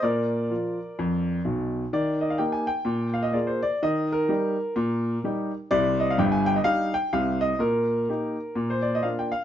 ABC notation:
X:1
M:4/4
L:1/16
Q:"Swing" 1/4=127
K:Eb
V:1 name="Grand piano"
[Bd]12 z4 | d2 e f g a g4 f e d c d2 | e2 B12 z2 | d2 e f g a g e f2 g2 f2 e2 |
B8- B c d e f g f z |]
V:2 name="Grand piano" clef=bass
B,,4 [F,F]4 F,,4 [_C,,_C,]4 | E,4 [B,EG]4 B,,4 [B,FA]4 | E,4 [G,EG]4 B,,4 [G,EG]4 | [C,,C,]4 [G,,,G,,]4 [G,EG]4 [C,,C,]4 |
B,,4 [B,EG]4 B,,4 [B,DF]4 |]